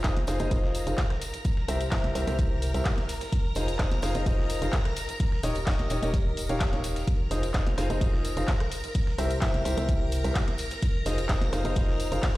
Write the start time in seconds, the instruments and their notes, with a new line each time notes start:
Already playing: string machine A#4 A#5
0.04 fm bass F1, upright piano D#4 F4 G#4 C5 D#5, kick, snare, clap, closed hi-hat, tambourine
0.17 closed hi-hat, high conga
0.27 fm bass F1, upright piano D#4 F4 G#4 C5 F5, cross-stick, snare, open hi-hat, tambourine
0.40 fm bass F1, upright piano D#4 F4 G#4 C5 D#5, closed hi-hat, tambourine, high conga
0.51 fm bass F1, upright piano D#4 F4 G#4 C5 D#5, kick, closed hi-hat, tambourine
0.63 snare
0.75 open hi-hat, tambourine
0.87 fm bass F1, upright piano D#4 F4 G#4 C5 F5, closed hi-hat, tambourine
0.98 kick, snare, clap, closed hi-hat, tambourine
1.10 cross-stick, snare, closed hi-hat
1.21 open hi-hat, tambourine
1.34 closed hi-hat, tambourine
1.44 kick, closed hi-hat, tambourine
1.57 snare
1.68 fm bass C2, upright piano E4 G4 A#4 C5 E5, cross-stick, open hi-hat, tambourine
1.81 closed hi-hat, tambourine
1.91 fm bass C2, upright piano E4 G4 A#4 C5 E5, kick, snare, clap, closed hi-hat, open hi-hat, tambourine
2.04 snare, closed hi-hat, high conga
2.15 fm bass C2, upright piano E4 G4 A#4 C5 E5, open hi-hat, tambourine
2.27 fm bass C2, upright piano E4 G4 A#4 C5 E5, snare, closed hi-hat, tambourine, high conga
2.39 kick, closed hi-hat, tambourine
2.62 open hi-hat, tambourine
2.74 fm bass C2, upright piano E4 G4 A#4 C5 E5, closed hi-hat, tambourine
2.85 kick, snare, clap, closed hi-hat, tambourine
2.98 snare, closed hi-hat, high conga
3.09 open hi-hat, tambourine
3.21 snare, closed hi-hat, tambourine
3.32 kick, closed hi-hat, tambourine
3.55 fm bass F1, upright piano D#4 F4 G#4 C5 D#5, open hi-hat, tambourine
3.68 closed hi-hat, tambourine
3.79 fm bass F1, upright piano D#4 F4 G#4 C5 D#5, kick, snare, clap, closed hi-hat, tambourine
3.91 closed hi-hat, high conga
4.02 fm bass F1, upright piano D#4 F4 G#4 C5 F5, cross-stick, snare, open hi-hat, tambourine
4.15 fm bass F1, upright piano D#4 F4 G#4 C5 D#5, closed hi-hat, tambourine, high conga
4.26 fm bass F1, upright piano D#4 F4 G#4 C5 D#5, kick, closed hi-hat, tambourine
4.38 snare
4.50 open hi-hat, tambourine
4.62 fm bass F1, upright piano D#4 F4 G#4 C5 F5, closed hi-hat, tambourine
4.73 kick, snare, clap, closed hi-hat, tambourine
4.85 cross-stick, snare, closed hi-hat
4.96 open hi-hat, tambourine
5.09 closed hi-hat, tambourine
5.19 kick, closed hi-hat, tambourine
5.32 snare
5.43 fm bass D#1, upright piano D#4 G4 A#4 C#5 D#5, cross-stick, open hi-hat, tambourine
5.55 closed hi-hat, tambourine
5.66 fm bass D#1, upright piano D#4 G4 A#4 C#5 D#5, kick, snare, clap, closed hi-hat, open hi-hat, tambourine
5.79 snare, closed hi-hat, high conga
5.90 fm bass D#1, upright piano D#4 G4 A#4 C#5 D#5, open hi-hat, tambourine
6.02 fm bass D#1, upright piano D#4 G4 A#4 C#5 D#5, snare, closed hi-hat, tambourine, high conga
6.14 kick, closed hi-hat, tambourine
6.37 open hi-hat, tambourine
6.49 fm bass D#1, upright piano D#4 G4 A#4 C#5 F5, closed hi-hat, tambourine
6.60 kick, snare, clap, closed hi-hat, tambourine
6.73 fm bass D#1, upright piano D#4 G4 A#4 C#5 F5, snare, closed hi-hat, high conga
6.84 open hi-hat, tambourine
6.96 snare, closed hi-hat, tambourine
7.07 string machine A#4 A#5, kick, closed hi-hat, tambourine
7.31 fm bass F1, upright piano D#4 F4 G#4 C5 D#5, open hi-hat, tambourine
7.43 closed hi-hat, tambourine
7.54 fm bass F1, upright piano D#4 F4 G#4 C5 D#5, kick, snare, clap, closed hi-hat, tambourine
7.67 closed hi-hat, high conga
7.78 fm bass F1, upright piano D#4 F4 G#4 C5 F5, cross-stick, snare, open hi-hat, tambourine
7.90 fm bass F1, upright piano D#4 F4 G#4 C5 D#5, closed hi-hat, tambourine, high conga
8.01 fm bass F1, upright piano D#4 F4 G#4 C5 D#5, kick, closed hi-hat, tambourine
8.13 snare
8.25 open hi-hat, tambourine
8.37 fm bass F1, upright piano D#4 F4 G#4 C5 F5, closed hi-hat, tambourine
8.48 kick, snare, clap, closed hi-hat, tambourine
8.60 cross-stick, snare, closed hi-hat
8.72 open hi-hat, tambourine
8.84 closed hi-hat, tambourine
8.94 kick, closed hi-hat, tambourine
9.07 snare
9.18 fm bass C2, upright piano E4 G4 A#4 C5 E5, cross-stick, open hi-hat, tambourine
9.31 closed hi-hat, tambourine
9.41 fm bass C2, upright piano E4 G4 A#4 C5 E5, kick, snare, clap, closed hi-hat, open hi-hat, tambourine
9.54 snare, closed hi-hat, high conga
9.65 fm bass C2, upright piano E4 G4 A#4 C5 E5, open hi-hat, tambourine
9.77 fm bass C2, upright piano E4 G4 A#4 C5 E5, snare, closed hi-hat, tambourine, high conga
9.89 kick, closed hi-hat, tambourine
10.12 open hi-hat, tambourine
10.24 fm bass C2, upright piano E4 G4 A#4 C5 E5, closed hi-hat, tambourine
10.35 kick, snare, clap, closed hi-hat, tambourine
10.48 snare, closed hi-hat, high conga
10.58 open hi-hat, tambourine
10.71 snare, closed hi-hat, tambourine
10.82 kick, closed hi-hat, tambourine
11.06 fm bass F1, upright piano D#4 F4 G#4 C5 D#5, open hi-hat, tambourine
11.18 closed hi-hat, tambourine
11.29 fm bass F1, upright piano D#4 F4 G#4 C5 D#5, kick, snare, clap, closed hi-hat, tambourine
11.41 closed hi-hat, high conga
11.53 fm bass F1, upright piano D#4 F4 G#4 C5 F5, cross-stick, snare, open hi-hat, tambourine
11.64 fm bass F1, upright piano D#4 F4 G#4 C5 D#5, closed hi-hat, tambourine, high conga
11.76 fm bass F1, upright piano D#4 F4 G#4 C5 D#5, kick, closed hi-hat, tambourine
11.88 snare
12.00 open hi-hat, tambourine
12.12 fm bass F1, upright piano D#4 F4 G#4 C5 F5, closed hi-hat, tambourine
12.23 kick, snare, clap, closed hi-hat, tambourine